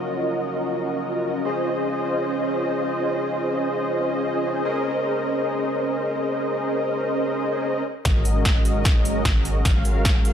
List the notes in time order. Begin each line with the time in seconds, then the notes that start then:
Already playing: C#4 F4 F#4 A#4 D#5
1.45 C#4 F4 G#4 C5 D#5
4.65 C#4 G#4 A#4 C5 D#5
8.05 G#1 G#3 C#4 F#4 A#4 D#5, kick, snare, closed hi-hat
8.25 closed hi-hat
8.45 kick, snare, closed hi-hat
8.65 closed hi-hat
8.85 kick, snare, closed hi-hat
9.05 closed hi-hat
9.25 G#1 G#3 C#4 F#4 A#4 D#5, kick, snare, closed hi-hat
9.45 closed hi-hat
9.65 G#1 G#3 C#4 F#4 A#4 F5, kick, snare, closed hi-hat
9.85 closed hi-hat
10.05 kick, snare, closed hi-hat
10.25 closed hi-hat